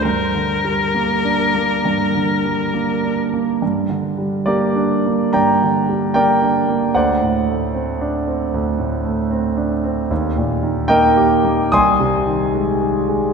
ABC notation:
X:1
M:4/4
L:1/8
Q:1/4=73
K:Gm
V:1 name="Viola"
B6- B z | z8 | z8 | z8 |]
V:2 name="Grand piano"
z8 | z2 [GBd]2 [dgb]2 [Bdg]2 | [cd^f]8 | z2 [Beg]2 [_ac'e']4 |]
V:3 name="Grand piano" clef=bass
(3G,, D, G, (3B, D B, (3G,, D, G, (3B, D B, | (3G,, D, G, (3B, D B, (3G,, D, G, (3B, D B, | (3D,, A,, A, (3C D C (3D,, A,, A, (3C D C | (3E,, B,, E, (3B, G B, (3C,, C, E, (3_A, _A A, |]